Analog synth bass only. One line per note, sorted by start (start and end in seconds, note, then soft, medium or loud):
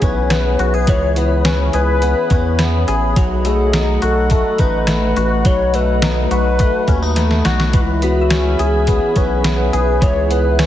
0.02 0.56 B1 medium
0.59 0.86 B1 medium
0.88 1.70 C#2 loud
1.74 2.14 C#2 medium
2.31 2.85 E2 medium
2.88 3.15 A1 medium
3.17 3.98 B1 loud
4.03 4.43 B1 medium
4.59 5.13 A1 medium
5.17 5.44 A1 medium
5.45 6.27 B1 medium
6.31 6.72 B1 medium
6.88 7.42 D#2 medium
7.45 7.72 B1 medium
7.74 8.55 C#2 loud
8.59 9.00 C#2 medium
9.16 9.71 B1 medium
9.73 10.01 B1 medium
10.02 10.66 C#2 loud